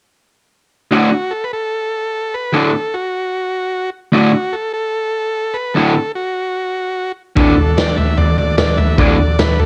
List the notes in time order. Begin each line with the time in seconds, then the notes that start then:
0.91 D2 A2 D3 F#4
1.31 A4
1.44 B4
1.53 A4
2.34 B4
2.53 D2 A2 D3 A4
2.94 F#4
4.12 D2 A2 D3 F#4
4.53 A4
4.74 A4
5.54 B4
5.74 D2 A2 D3 A4
6.15 F#4
7.36 D2 A2 D3 D4 F#4 A4, kick, floor tom
7.57 floor tom
7.74 D4 F#4 A4 D5, snare, floor tom
7.97 E5, floor tom
8.17 D4 F#4 A4 D5, floor tom
8.38 D5, floor tom
8.56 D4 F#4 A4 D5, snare, floor tom
8.77 E5, floor tom
8.97 D2 A2 D3 D4 F#4 A4 D5, kick, floor tom
9.19 floor tom
9.39 D4 F#4 A4 B4, snare, floor tom
9.59 A4, floor tom